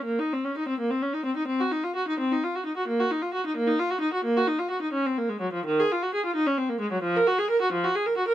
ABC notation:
X:1
M:12/8
L:1/16
Q:3/8=87
K:Bbm
V:1 name="Viola"
B, E C D E C B, C D E C E C G E F G E C E F G E G | B, G E F G E B, E F G E G B, G E F G E D C B, A, G, F, | E, A F G A F E D C B, A, G, F, B G A B G F, G A B G B |]